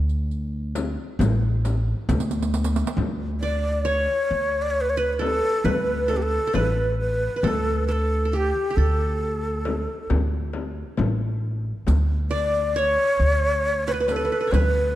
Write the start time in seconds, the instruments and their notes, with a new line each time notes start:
Already playing: upright bass D2
0.09 riq
0.31 riq
0.75 riq, frame drum
1.19 upright bass A1, riq, frame drum
1.65 riq, frame drum
2.09 upright bass D2, riq, frame drum
2.20 riq
2.31 riq
2.42 riq
2.54 riq
2.64 riq
2.76 riq
2.87 riq
2.97 upright bass D2, frame drum
3.41 ney D5, qanun D5
3.85 qanun C#5, ney C#5
4.31 upright bass D2
4.62 ney D5
4.70 ney C#5
4.81 ney B4
4.89 ney C#5
4.97 qanun B4, ney B4
5.13 ney B4
5.19 qanun A4, ney A4, frame drum
5.64 upright bass D2, qanun B4, ney B4, frame drum
6.08 qanun A4, ney A4, frame drum
6.17 ney G4
6.22 ney A4
6.47 qanun A4
6.54 upright bass A1, ney B4, qanun B4, frame drum
7.00 ney B4
7.36 qanun B4
7.43 upright bass D2, qanun A4, ney B4, frame drum
7.47 ney A4
7.88 qanun A4, ney B4
7.92 ney A4
8.25 qanun A4
8.32 qanun G4, ney G4 A4
8.71 qanun G4
8.76 upright bass D2, ney A4, qanun A4
9.65 frame drum
10.10 upright bass D2, frame drum
10.53 frame drum
10.97 upright bass A1, frame drum
11.87 upright bass D2, riq, frame drum
12.31 qanun D5, ney D5
12.54 riq
12.75 qanun C#5, ney C#5 D5
13.19 upright bass D2, riq
13.87 qanun B4, ney C#5
13.92 ney B4, qanun B4
14.00 qanun B4
14.08 ney A4 B4, qanun B4, riq, frame drum
14.16 qanun B4
14.25 qanun B4
14.32 qanun B4
14.41 qanun B4
14.47 qanun C#5
14.52 upright bass D2, qanun B4, ney C#5, riq, frame drum
14.56 ney B4